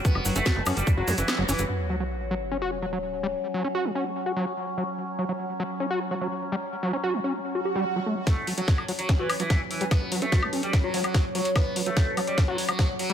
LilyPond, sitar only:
\new Staff \with { instrumentName = "Sitar" } { \clef bass \time 4/4 \key fis \phrygian \tempo 4 = 146 b8 r16 a8 r8 g16 r16 fis16 r16 e8 r16 e16 r16 | r1 | r1 | r1 |
r1 | a8 r16 fis8 r8 fis16 r16 e16 r16 e8 r16 e16 r16 | r8. a8 r8 g16 r16 fis16 r16 fis8 r16 fis16 r16 | b8 r16 a8 r8 g16 r16 fis16 r16 fis8 r16 fis16 r16 | }